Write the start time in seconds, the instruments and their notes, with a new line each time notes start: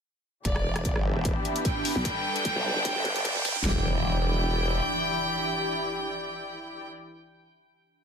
0.45 wobble bass E1, string section E3 B3 D4 G4, analog synth pad D4, violin section D5, kick, closed hi-hat, riser
0.56 analog synth pad G4 E5, cross-stick
0.76 cross-stick, closed hi-hat
0.85 wobble bass E1, kick, closed hi-hat
0.96 wobble bass G1, analog synth pad B5, cross-stick
1.16 wobble bass E1
1.25 kick, closed hi-hat
1.45 closed hi-hat
1.56 closed hi-hat
1.65 violin section G5, kick, closed hi-hat
1.85 open hi-hat
1.96 wobble bass B1
2.05 string section G3 D4 A4 B4, kick, closed hi-hat
2.12 analog synth pad A4 G5
2.36 closed hi-hat
2.45 kick, closed hi-hat
2.56 wobble bass B1
2.76 wobble bass G1
2.85 kick, closed hi-hat
2.96 wobble bass G1
3.05 kick, closed hi-hat
3.16 closed hi-hat
3.25 kick, closed hi-hat
3.36 kick
3.45 kick, open hi-hat
3.56 wobble bass D2, kick
3.65 wobble bass E1, string section E3 E4 G4 D5, analog synth pad D4, violin section G5, snare, impact
3.71 analog synth pad G4
3.77 analog synth pad E5
3.83 analog synth pad B5